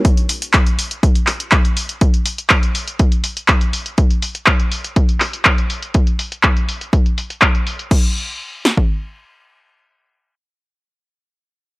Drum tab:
CC |----------------|----------------|----------------|----------------|
HH |xxoxxxoxxxoxxxox|xxoxxxoxxxoxxxox|xxoxxxoxxxoxxxox|xxoxxxoxxxoxxxox|
CP |----x-----x-x---|----x-------x---|----x-----x-x---|----x-------x---|
SD |----------------|----------------|----------------|----------------|
BD |o---o---o---o---|o---o---o---o---|o---o---o---o---|o---o---o---o---|

CC |x---------------|----------------|
HH |----------------|----------------|
CP |----------------|----------------|
SD |------o---------|----------------|
BD |o------o--------|----------------|